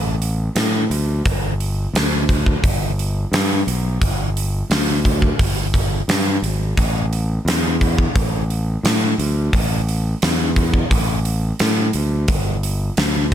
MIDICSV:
0, 0, Header, 1, 3, 480
1, 0, Start_track
1, 0, Tempo, 689655
1, 871, Time_signature, 4, 2, 24, 8
1, 9286, End_track
2, 0, Start_track
2, 0, Title_t, "Fingered electric bass"
2, 0, Program_c, 0, 33
2, 0, Note_on_c, 0, 33, 89
2, 334, Note_off_c, 0, 33, 0
2, 386, Note_on_c, 0, 45, 76
2, 599, Note_off_c, 0, 45, 0
2, 627, Note_on_c, 0, 38, 84
2, 840, Note_off_c, 0, 38, 0
2, 874, Note_on_c, 0, 31, 94
2, 1295, Note_off_c, 0, 31, 0
2, 1347, Note_on_c, 0, 38, 77
2, 1771, Note_off_c, 0, 38, 0
2, 1836, Note_on_c, 0, 31, 89
2, 2257, Note_off_c, 0, 31, 0
2, 2308, Note_on_c, 0, 43, 74
2, 2521, Note_off_c, 0, 43, 0
2, 2555, Note_on_c, 0, 35, 80
2, 2765, Note_off_c, 0, 35, 0
2, 2795, Note_on_c, 0, 31, 89
2, 3216, Note_off_c, 0, 31, 0
2, 3270, Note_on_c, 0, 38, 79
2, 3693, Note_off_c, 0, 38, 0
2, 3755, Note_on_c, 0, 31, 88
2, 4176, Note_off_c, 0, 31, 0
2, 4232, Note_on_c, 0, 43, 70
2, 4443, Note_off_c, 0, 43, 0
2, 4470, Note_on_c, 0, 32, 73
2, 4682, Note_off_c, 0, 32, 0
2, 4712, Note_on_c, 0, 33, 91
2, 5134, Note_off_c, 0, 33, 0
2, 5185, Note_on_c, 0, 40, 79
2, 5610, Note_off_c, 0, 40, 0
2, 5676, Note_on_c, 0, 33, 87
2, 6096, Note_off_c, 0, 33, 0
2, 6149, Note_on_c, 0, 45, 76
2, 6361, Note_off_c, 0, 45, 0
2, 6391, Note_on_c, 0, 38, 80
2, 6602, Note_off_c, 0, 38, 0
2, 6632, Note_on_c, 0, 33, 92
2, 7053, Note_off_c, 0, 33, 0
2, 7118, Note_on_c, 0, 40, 75
2, 7536, Note_off_c, 0, 40, 0
2, 7591, Note_on_c, 0, 33, 93
2, 8012, Note_off_c, 0, 33, 0
2, 8076, Note_on_c, 0, 45, 78
2, 8284, Note_off_c, 0, 45, 0
2, 8312, Note_on_c, 0, 38, 80
2, 8522, Note_off_c, 0, 38, 0
2, 8553, Note_on_c, 0, 31, 92
2, 8972, Note_off_c, 0, 31, 0
2, 9031, Note_on_c, 0, 38, 83
2, 9286, Note_off_c, 0, 38, 0
2, 9286, End_track
3, 0, Start_track
3, 0, Title_t, "Drums"
3, 151, Note_on_c, 9, 46, 52
3, 221, Note_off_c, 9, 46, 0
3, 388, Note_on_c, 9, 46, 70
3, 393, Note_on_c, 9, 38, 101
3, 457, Note_off_c, 9, 46, 0
3, 463, Note_off_c, 9, 38, 0
3, 635, Note_on_c, 9, 46, 51
3, 704, Note_off_c, 9, 46, 0
3, 873, Note_on_c, 9, 46, 65
3, 874, Note_on_c, 9, 36, 105
3, 943, Note_off_c, 9, 46, 0
3, 944, Note_off_c, 9, 36, 0
3, 1116, Note_on_c, 9, 46, 45
3, 1186, Note_off_c, 9, 46, 0
3, 1360, Note_on_c, 9, 46, 68
3, 1365, Note_on_c, 9, 38, 110
3, 1429, Note_off_c, 9, 46, 0
3, 1435, Note_off_c, 9, 38, 0
3, 1594, Note_on_c, 9, 36, 71
3, 1597, Note_on_c, 9, 46, 43
3, 1664, Note_off_c, 9, 36, 0
3, 1666, Note_off_c, 9, 46, 0
3, 1715, Note_on_c, 9, 36, 76
3, 1785, Note_off_c, 9, 36, 0
3, 1835, Note_on_c, 9, 36, 95
3, 1839, Note_on_c, 9, 46, 65
3, 1905, Note_off_c, 9, 36, 0
3, 1909, Note_off_c, 9, 46, 0
3, 2083, Note_on_c, 9, 46, 49
3, 2153, Note_off_c, 9, 46, 0
3, 2319, Note_on_c, 9, 46, 67
3, 2325, Note_on_c, 9, 38, 100
3, 2389, Note_off_c, 9, 46, 0
3, 2395, Note_off_c, 9, 38, 0
3, 2561, Note_on_c, 9, 46, 54
3, 2630, Note_off_c, 9, 46, 0
3, 2795, Note_on_c, 9, 36, 102
3, 2798, Note_on_c, 9, 46, 70
3, 2864, Note_off_c, 9, 36, 0
3, 2867, Note_off_c, 9, 46, 0
3, 3040, Note_on_c, 9, 46, 52
3, 3110, Note_off_c, 9, 46, 0
3, 3277, Note_on_c, 9, 46, 76
3, 3282, Note_on_c, 9, 38, 105
3, 3346, Note_off_c, 9, 46, 0
3, 3352, Note_off_c, 9, 38, 0
3, 3515, Note_on_c, 9, 36, 72
3, 3520, Note_on_c, 9, 46, 49
3, 3585, Note_off_c, 9, 36, 0
3, 3590, Note_off_c, 9, 46, 0
3, 3634, Note_on_c, 9, 36, 69
3, 3704, Note_off_c, 9, 36, 0
3, 3754, Note_on_c, 9, 36, 99
3, 3754, Note_on_c, 9, 46, 74
3, 3823, Note_off_c, 9, 46, 0
3, 3824, Note_off_c, 9, 36, 0
3, 3994, Note_on_c, 9, 36, 70
3, 3998, Note_on_c, 9, 46, 52
3, 4064, Note_off_c, 9, 36, 0
3, 4068, Note_off_c, 9, 46, 0
3, 4238, Note_on_c, 9, 46, 71
3, 4244, Note_on_c, 9, 38, 99
3, 4308, Note_off_c, 9, 46, 0
3, 4314, Note_off_c, 9, 38, 0
3, 4480, Note_on_c, 9, 46, 54
3, 4549, Note_off_c, 9, 46, 0
3, 4715, Note_on_c, 9, 36, 102
3, 4717, Note_on_c, 9, 46, 72
3, 4785, Note_off_c, 9, 36, 0
3, 4787, Note_off_c, 9, 46, 0
3, 4960, Note_on_c, 9, 46, 49
3, 5030, Note_off_c, 9, 46, 0
3, 5204, Note_on_c, 9, 46, 68
3, 5209, Note_on_c, 9, 38, 106
3, 5273, Note_off_c, 9, 46, 0
3, 5279, Note_off_c, 9, 38, 0
3, 5437, Note_on_c, 9, 36, 76
3, 5442, Note_on_c, 9, 46, 44
3, 5507, Note_off_c, 9, 36, 0
3, 5511, Note_off_c, 9, 46, 0
3, 5557, Note_on_c, 9, 36, 68
3, 5627, Note_off_c, 9, 36, 0
3, 5676, Note_on_c, 9, 36, 103
3, 5678, Note_on_c, 9, 46, 64
3, 5746, Note_off_c, 9, 36, 0
3, 5748, Note_off_c, 9, 46, 0
3, 5919, Note_on_c, 9, 46, 49
3, 5988, Note_off_c, 9, 46, 0
3, 6158, Note_on_c, 9, 46, 68
3, 6164, Note_on_c, 9, 38, 105
3, 6228, Note_off_c, 9, 46, 0
3, 6234, Note_off_c, 9, 38, 0
3, 6400, Note_on_c, 9, 46, 49
3, 6469, Note_off_c, 9, 46, 0
3, 6634, Note_on_c, 9, 36, 101
3, 6636, Note_on_c, 9, 46, 72
3, 6704, Note_off_c, 9, 36, 0
3, 6706, Note_off_c, 9, 46, 0
3, 6880, Note_on_c, 9, 46, 49
3, 6950, Note_off_c, 9, 46, 0
3, 7114, Note_on_c, 9, 46, 72
3, 7120, Note_on_c, 9, 38, 105
3, 7184, Note_off_c, 9, 46, 0
3, 7189, Note_off_c, 9, 38, 0
3, 7351, Note_on_c, 9, 46, 50
3, 7352, Note_on_c, 9, 36, 77
3, 7421, Note_off_c, 9, 46, 0
3, 7422, Note_off_c, 9, 36, 0
3, 7472, Note_on_c, 9, 36, 73
3, 7542, Note_off_c, 9, 36, 0
3, 7593, Note_on_c, 9, 36, 96
3, 7597, Note_on_c, 9, 46, 70
3, 7663, Note_off_c, 9, 36, 0
3, 7667, Note_off_c, 9, 46, 0
3, 7832, Note_on_c, 9, 46, 51
3, 7901, Note_off_c, 9, 46, 0
3, 8070, Note_on_c, 9, 46, 74
3, 8075, Note_on_c, 9, 38, 101
3, 8139, Note_off_c, 9, 46, 0
3, 8145, Note_off_c, 9, 38, 0
3, 8305, Note_on_c, 9, 46, 51
3, 8375, Note_off_c, 9, 46, 0
3, 8546, Note_on_c, 9, 46, 75
3, 8550, Note_on_c, 9, 36, 109
3, 8616, Note_off_c, 9, 46, 0
3, 8619, Note_off_c, 9, 36, 0
3, 8793, Note_on_c, 9, 46, 52
3, 8862, Note_off_c, 9, 46, 0
3, 9029, Note_on_c, 9, 46, 72
3, 9034, Note_on_c, 9, 38, 110
3, 9098, Note_off_c, 9, 46, 0
3, 9104, Note_off_c, 9, 38, 0
3, 9286, End_track
0, 0, End_of_file